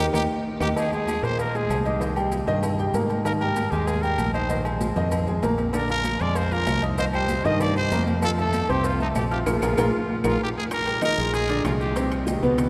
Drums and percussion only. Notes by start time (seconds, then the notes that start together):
0.14 low bongo, high conga, high timbale, claves, maracas
0.60 low bongo, high conga, high timbale, claves, maracas
0.76 cowbell, low agogo, maracas
0.92 high conga, low agogo, maracas
1.07 cowbell, high conga, low agogo, maracas
1.24 maracas
1.39 cowbell, high conga, low agogo, maracas
1.55 high conga, maracas
1.70 cowbell, high conga, low timbale, low agogo, maracas
1.85 cowbell, low agogo, maracas
2.01 cowbell, high conga, maracas
2.16 high conga, low agogo, maracas
2.32 cowbell, high conga, low agogo, maracas
2.47 cowbell, maracas
2.63 cowbell, high conga, low conga, low agogo, maracas
2.79 high conga, maracas
2.94 cowbell, high conga, low agogo, maracas
3.10 cowbell, high conga, low agogo, maracas
3.25 cowbell, high conga, low agogo, maracas
3.41 high conga, low agogo, maracas
3.56 cowbell, high conga, low agogo, maracas
3.72 high conga, maracas
3.87 cowbell, high conga, low agogo, maracas
4.03 high conga, maracas
4.18 cowbell, high conga, low agogo, maracas
4.34 cowbell, low agogo, maracas
4.50 cowbell, high conga, maracas
4.65 high conga, low agogo, maracas
4.81 cowbell, high conga, low agogo, maracas
4.96 cowbell, high conga, maracas
5.11 cowbell, high conga, low conga, low agogo, maracas
5.27 high conga, low conga, maracas
5.42 cowbell, high conga, low timbale, low agogo, maracas
5.58 cowbell, low agogo, maracas
5.73 cowbell, high conga, low agogo, claves, maracas
5.89 high conga, low agogo, maracas
6.04 cowbell, high conga, low agogo, claves, maracas
6.20 high conga, maracas
6.35 cowbell, high conga, low agogo, maracas
6.51 high conga, maracas
6.67 cowbell, high conga, low timbale, low agogo, claves, maracas
6.82 cowbell, low agogo, maracas
6.98 cowbell, high conga, maracas
7.13 high conga, low agogo, claves, maracas
7.28 cowbell, high conga, low agogo, maracas
7.45 cowbell, high conga, maracas
7.60 cowbell, high conga, low conga, low agogo, claves, maracas
7.76 high conga, maracas
7.91 cowbell, high conga, low timbale, low agogo, maracas
8.07 cowbell, high conga, low agogo, maracas
8.22 cowbell, high conga, low agogo, claves, maracas
8.38 high conga, low agogo, maracas
8.53 cowbell, high conga, low agogo, claves, maracas
8.69 high conga, maracas
8.84 cowbell, high conga, low agogo, maracas
9.00 high conga, maracas
9.15 cowbell, high conga, low timbale, low agogo, claves, maracas
9.31 cowbell, low agogo, maracas
9.46 cowbell, high conga, high timbale, claves, maracas
9.62 cowbell, high conga, high timbale, claves, maracas
9.77 cowbell, high conga, high timbale, claves, maracas
10.24 cowbell, high conga, high timbale, claves, maracas
10.71 high bongo, high conga, high timbale, claves, maracas
10.86 high conga, high timbale, maracas
11.02 high bongo, high conga, high timbale, claves, maracas
11.18 maracas
11.34 high bongo, high conga, high timbale, maracas
11.49 high conga, high timbale, maracas
11.65 high bongo, low bongo, high conga, high timbale, low timbale, claves, maracas
11.80 high conga, maracas
11.96 high bongo, high conga, high timbale, maracas
12.11 high conga, high timbale, claves, maracas
12.27 high bongo, high conga, high timbale, maracas
12.42 high bongo, high conga, maracas
12.58 high bongo, high conga, low conga, high timbale, claves, maracas